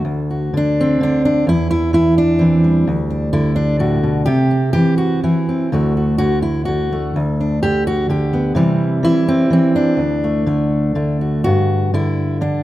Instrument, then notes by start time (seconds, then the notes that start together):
steel-string acoustic guitar
Already playing: D3
0.05 D2
0.30 F#4
0.54 D3 D4
0.81 C4
1.01 D3 D4
1.25 D4
1.47 E2 E4
1.71 E4
1.93 E3 E4
2.18 D4
2.39 E3 C4
2.64 G3
2.87 D2
3.10 D4
3.33 D3 E4
3.56 D4
3.79 A2 F#4
4.03 B2
4.26 C3 G4
4.51 C4
4.73 E3 G4
4.98 F#4
5.24 E3 E4
5.49 C4
5.72 D2 D3 A3 F#4
5.97 F#4
6.18 D3 F#4
6.42 E4
6.65 D3 F#4
6.92 A3
7.16 D2
7.41 D4
7.63 D3 G4
7.87 F#4
8.09 D3 G4
8.33 B3
8.55 C3 E3 G3 C4 E4
9.03 E3 E4
9.28 C4
9.50 E3 C4
9.76 D4
9.97 D2
10.24 A3
10.46 D3 A3
10.95 D3 A3
11.21 F#4
11.44 G2 F#4
11.94 D3 E4
12.41 D3 D4